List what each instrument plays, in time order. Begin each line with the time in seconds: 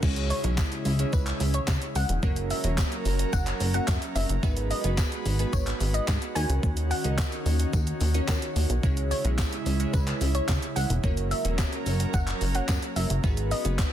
0.03 analog synth bass C#2, analog synth pad C#3 G#3 E4, synth keys G#3 C#4 E4 G#4 C#5, kick, crash, tambourine, shaker
0.16 closed hi-hat, shaker
0.30 synth pluck C#5, open hi-hat, tambourine, shaker
0.44 analog synth bass B1, synth keys G#3 C#4 E4 G#4 C#5, closed hi-hat, shaker
0.58 kick, snare, clap, tambourine, shaker
0.72 closed hi-hat, shaker
0.85 analog synth bass C#2, open hi-hat, tambourine, shaker
0.99 synth keys G#3 C#4 E4 G#4 C#5, closed hi-hat, shaker
1.13 analog synth bass C#2, synth pluck B4, kick, tambourine, shaker
1.27 clap, closed hi-hat, shaker
1.40 analog synth bass C#2, open hi-hat, tambourine, shaker
1.54 synth pluck C#5, closed hi-hat, shaker
1.67 analog synth bass C#3, kick, snare, clap, tambourine, shaker
1.82 closed hi-hat, shaker
1.95 analog synth bass C#2, synth pluck F#5, open hi-hat, tambourine, shaker
2.09 analog synth bass E1, closed hi-hat, shaker
2.23 analog synth bass F#1, analog synth pad F#3 C#4 A#4, synth keys A#3 C#4 F#4 A#4 C#5, kick, shaker
2.36 closed hi-hat, shaker
2.50 synth pluck E5, open hi-hat, tambourine, shaker
2.64 analog synth bass E1, synth keys A#3 C#4 F#4 A#4 C#5, closed hi-hat, shaker
2.78 kick, snare, clap, tambourine, shaker
2.92 closed hi-hat, shaker
3.05 analog synth bass F#1, open hi-hat, tambourine, shaker
3.19 closed hi-hat, shaker
3.33 analog synth bass F#1, synth pluck F#5, kick, tambourine, shaker
3.47 clap, closed hi-hat, shaker
3.60 analog synth bass F#1, open hi-hat, tambourine, shaker
3.74 synth keys A#3 C#4 F#4 A#4 E5, synth pluck F#5, closed hi-hat, shaker
3.88 analog synth bass F#2, kick, snare, clap, tambourine, shaker
4.02 closed hi-hat, shaker
4.15 analog synth bass F#1, synth pluck E5, open hi-hat, tambourine, shaker
4.29 analog synth bass F#1, closed hi-hat, shaker
4.43 analog synth bass G#1, analog synth pad G#3 F#4 B4, synth keys B3 D#4 F#4 G#4 B4, kick, tambourine, shaker
4.57 closed hi-hat, shaker
4.71 synth pluck D#5, open hi-hat, shaker
4.84 analog synth bass F#1, synth keys B3 D#4 F#4 G#4 B4, closed hi-hat, shaker
4.98 kick, snare, clap, tambourine, shaker
5.12 closed hi-hat, shaker
5.26 analog synth bass G#1, open hi-hat, tambourine, shaker
5.39 synth keys B3 D#4 F#4 G#4 B4, closed hi-hat, shaker
5.53 analog synth bass G#1, synth pluck C#5, kick, tambourine, shaker
5.67 clap, closed hi-hat, shaker
5.80 analog synth bass G#1, open hi-hat, tambourine, shaker
5.94 synth pluck D#5, closed hi-hat, shaker
6.08 analog synth bass G#2, kick, snare, clap, tambourine, shaker
6.22 closed hi-hat, shaker
6.35 analog synth bass D#2, analog synth pad D#3 C#4, synth keys C#4 D#4 F#4 A#4 C#5, synth pluck G#5, open hi-hat, tambourine, shaker
6.49 analog synth bass C#2, closed hi-hat, shaker
6.63 analog synth bass D#2, kick, shaker
6.77 closed hi-hat, shaker
6.91 synth pluck F#5, open hi-hat, shaker
7.04 analog synth bass C#2, synth keys C#4 D#4 F#4 A#4 D#5, closed hi-hat, shaker
7.18 kick, snare, clap, tambourine, shaker
7.32 closed hi-hat, shaker
7.46 analog synth bass D#2, open hi-hat, tambourine, shaker
7.60 closed hi-hat, shaker
7.73 analog synth bass D#2, kick, tambourine, shaker
7.87 closed hi-hat, shaker
8.01 analog synth bass D#2, open hi-hat, tambourine, shaker
8.14 synth keys C#4 D#4 F#4 A#4 C#5, closed hi-hat, shaker
8.28 analog synth bass D#3, kick, snare, clap, tambourine, shaker
8.42 closed hi-hat, shaker
8.56 analog synth bass D#2, open hi-hat, tambourine, shaker
8.70 analog synth bass B1, closed hi-hat, shaker
8.83 analog synth bass C#2, analog synth pad C#3 G#3 E4, synth keys G#3 C#4 E4 G#4 C#5, kick, tambourine, shaker
8.97 closed hi-hat, shaker
9.11 synth pluck C#5, open hi-hat, tambourine, shaker
9.24 analog synth bass B1, synth keys G#3 C#4 E4 G#4 C#5, closed hi-hat, shaker
9.38 kick, snare, clap, tambourine, shaker
9.53 closed hi-hat, shaker
9.66 analog synth bass C#2, open hi-hat, tambourine, shaker
9.80 synth keys G#3 C#4 E4 G#4 C#5, closed hi-hat, shaker
9.93 analog synth bass C#2, synth pluck B4, kick, tambourine, shaker
10.07 clap, closed hi-hat, shaker
10.21 analog synth bass C#2, open hi-hat, tambourine, shaker
10.35 synth pluck C#5, closed hi-hat, shaker
10.48 analog synth bass C#3, kick, snare, clap, tambourine, shaker
10.62 closed hi-hat, shaker
10.76 analog synth bass C#2, synth pluck F#5, open hi-hat, tambourine, shaker
10.90 analog synth bass E1, closed hi-hat, shaker
11.03 analog synth bass F#1, analog synth pad F#3 C#4 A#4, synth keys A#3 C#4 F#4 A#4 C#5, kick, shaker
11.17 closed hi-hat, shaker
11.31 synth pluck E5, open hi-hat, tambourine, shaker
11.45 analog synth bass E1, synth keys A#3 C#4 F#4 A#4 C#5, closed hi-hat, shaker
11.58 kick, snare, clap, tambourine, shaker
11.73 closed hi-hat, shaker
11.86 analog synth bass F#1, open hi-hat, tambourine, shaker
12.00 closed hi-hat, shaker
12.14 analog synth bass F#1, synth pluck F#5, kick, tambourine, shaker
12.27 clap, closed hi-hat, shaker
12.41 analog synth bass F#1, open hi-hat, tambourine, shaker
12.55 synth keys A#3 C#4 F#4 A#4 C#5, synth pluck F#5, closed hi-hat, shaker
12.68 analog synth bass F#2, kick, snare, clap, tambourine, shaker
12.82 closed hi-hat, shaker
12.96 analog synth bass F#1, synth pluck E5, open hi-hat, tambourine, shaker
13.10 analog synth bass F#1, closed hi-hat, shaker
13.24 analog synth bass G#1, analog synth pad G#3 F#4 B4, synth keys B3 D#4 F#4 G#4 B4, kick, tambourine, shaker
13.37 closed hi-hat, shaker
13.51 synth pluck D#5, open hi-hat, tambourine, shaker
13.65 analog synth bass F#1, synth keys B3 D#4 F#4 G#4 B4, closed hi-hat, shaker
13.79 kick, snare, clap, tambourine, shaker